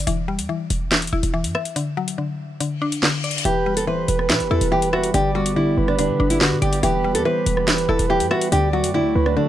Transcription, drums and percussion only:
0.07 closed hi-hat medium
0.39 closed hi-hat medium
0.70 closed hi-hat medium
0.92 snare loud
0.92 clap loud
0.92 closed hi-hat soft
0.97 closed hi-hat medium
1.02 closed hi-hat medium
1.07 closed hi-hat medium
1.23 closed hi-hat medium
1.44 closed hi-hat medium
1.55 cross-stick medium
1.65 closed hi-hat medium
1.76 closed hi-hat medium
2.08 closed hi-hat medium
2.60 closed hi-hat medium
2.92 closed hi-hat medium
3.03 snare loud
3.03 clap medium
3.24 closed hi-hat soft
3.31 closed hi-hat medium
3.38 closed hi-hat medium
3.45 closed hi-hat medium
3.77 closed hi-hat medium
4.08 closed hi-hat medium
4.19 cross-stick medium
4.30 snare loud
4.30 clap loud
4.30 closed hi-hat medium
4.40 closed hi-hat soft
4.61 closed hi-hat medium
4.82 closed hi-hat medium
4.93 cross-stick loud
5.03 closed hi-hat medium
5.14 closed hi-hat medium
5.46 closed hi-hat medium
5.88 cross-stick medium
5.99 closed hi-hat medium
6.30 closed hi-hat medium
6.41 snare loud
6.41 clap medium
6.62 closed hi-hat soft
6.62 open hi-hat medium
6.73 closed hi-hat medium
6.83 closed hi-hat medium
7.15 closed hi-hat loud
7.46 closed hi-hat medium
7.57 cross-stick medium
7.68 snare loud
7.68 clap loud
7.68 closed hi-hat medium
7.78 closed hi-hat soft
7.99 closed hi-hat medium
8.20 closed hi-hat medium
8.31 cross-stick loud
8.41 closed hi-hat medium
8.52 closed hi-hat medium
8.84 closed hi-hat loud
9.26 cross-stick medium

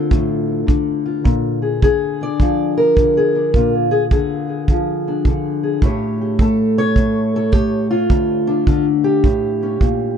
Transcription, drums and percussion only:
0.11 kick medium
0.68 kick medium
1.25 kick medium
1.82 kick medium
2.40 kick medium
2.97 kick medium
3.54 kick medium
4.11 kick medium
4.68 kick medium
5.25 kick medium
5.82 kick medium
6.39 kick medium
6.96 kick medium
7.53 kick medium
8.10 kick medium
8.67 kick medium
9.24 kick medium
9.81 kick medium

